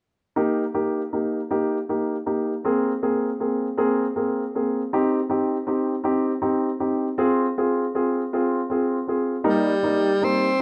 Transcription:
0.36 A#3 D#4 G4
0.74 A#3 D#4 G4
1.13 A#3 D#4 G4
1.51 A#3 D#4 G4
1.89 A#3 D#4 G4
2.26 A#3 D#4 G4
2.65 A#3 C4 G#4
3.03 A#3 C4 G#4
3.40 A#3 C4 G#4
3.77 A#3 C4 G#4
4.16 A#3 C4 G#4
4.55 A#3 C4 G#4
4.93 C4 D#4 G4
5.30 C4 D#4 G4
5.67 C4 D#4 G4
6.04 C4 D#4 G4
6.42 C4 D#4 G4
6.80 C4 D#4 G4
7.18 C4 F4 G#4
7.58 C4 F4 G#4
7.95 C4 F4 G#4
8.33 C4 F4 G#4
8.70 C4 F4 G#4
9.08 C4 F4 G#4
9.44 G3 A#3 D#4
9.49 G3
9.83 G3 A#3 D#4
10.21 G3 A#3 C4 D#4

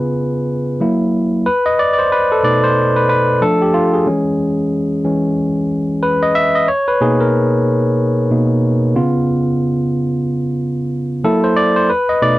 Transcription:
Already playing: C#3 B3 F4 G#4
0.80 F#3 A#3 E4
1.46 B4
1.66 D#5
1.79 D5
1.93 D5
1.99 C5
2.12 B4
2.32 A4
2.43 B2 A3 D#4 D5
2.64 C5
2.96 B4
3.09 B4
3.41 F3 A3 D4 A4
3.62 G4
3.74 F4
3.94 G#4
4.06 E3 G#3 C#4
5.04 E3 G#3 C#4
6.03 B4
6.23 D#5
6.35 E5
6.55 D#5
6.68 C#5
6.88 B4
7.01 B2 A#3 D#4 G#4
7.20 A#4
8.30 B2 A#3 D#4
8.95 C#3 B3 F4
11.24 F#3 A#3 E4 A4
11.44 C5
11.56 D5
11.76 C5
11.90 B4
12.09 D#5
12.22 B2 A3 D#4 D5

